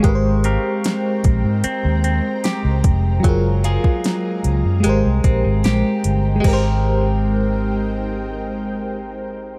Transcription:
<<
  \new Staff \with { instrumentName = "Ambient pad" } { \time 4/4 \key aes \major \tempo 4 = 75 << { <aes bes''>1~ | <aes bes''>1 | <aes ees' bes' c'' g''>1 | } \\ { <c'' g''>1 | <f'' aes''>2 <c'' g''>2 | r1 | } >> }
  \new Staff \with { instrumentName = "FM electric piano" } { \time 4/4 \key aes \major <aes g' bes' ces'' c''>1 | <ges f' aes' bes'>2 <aes g' bes' c''>2 | <aes g' bes' c''>1 | }
  \new Staff \with { instrumentName = "Clean electric guitar" } { \time 4/4 \key aes \major aes8 <c' g' bes'>4. c'8 c'8 g'4 | ges8 <bes f' aes'>4. aes8 c'8 g'4 | <aes c' g' bes'>1 | }
  \new Staff \with { instrumentName = "Fingered electric bass" } { \clef bass \time 4/4 \key aes \major aes,,8. r8. bes,,16 aes,16 r16 ees,8 r8 des,16 f,,8 | ges,,8. r8. des,16 ges,16 aes,,16 c,16 bes,,16 aes,,16 bes,,16 r16 g,,8 | aes,,1 | }
  \new DrumStaff \with { instrumentName = "Drums" } \drummode { \time 4/4 <hh bd>8 hh8 <hh sn>8 <hh bd>8 hh8 hh8 <hh sn>8 <hh bd>8 | <hh bd>8 hh16 bd16 <hh sn>8 hh8 hh8 <hh bd>8 <hh sn>8 hh8 | <cymc bd>4 r4 r4 r4 | }
>>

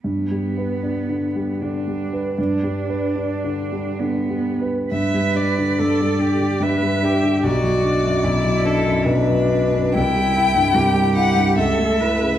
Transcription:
<<
  \new Staff \with { instrumentName = "Violin" } { \time 3/4 \key g \major \tempo 4 = 73 r2. | r2. | e''8 d''4. e''4 | d''4. a'8 b'4 |
g''4. fis''8 e''4 | }
  \new Staff \with { instrumentName = "Cello" } { \time 3/4 \key g \major b2 d'4 | d'2 b8. r16 | b'4 a'8 g'8 b'8 g'8 | fis'4 e'4 d'4 |
e'4 g'4 a'8 b'8 | }
  \new Staff \with { instrumentName = "Grand piano" } { \clef bass \time 3/4 \key g \major \tuplet 3/2 { g,8 g8 b'8 d'8 d8 g8 d8 g8 b'8 } | \tuplet 3/2 { g,8 g8 b'8 d'8 d8 g8 d8 g8 b'8 } | g,16 g16 d'16 d16 g,16 g16 d'16 d16 g,16 g16 d'16 d16 | b,,16 fis16 d'16 fis,16 b,,16 fis16 d'16 fis,16 b,,16 fis16 d'16 fis,16 |
c,16 g16 e'16 g,16 c,16 g16 e'16 g,16 cis,16 a16 e'16 cis16 | }
>>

